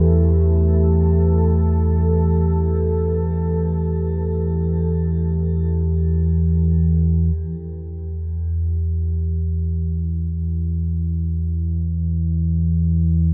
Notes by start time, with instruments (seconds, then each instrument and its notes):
Already playing: synth drone E2 E3, ambient pad E3 A3 A4 B4, singing bowl G4
7.34 synth drone E2 E3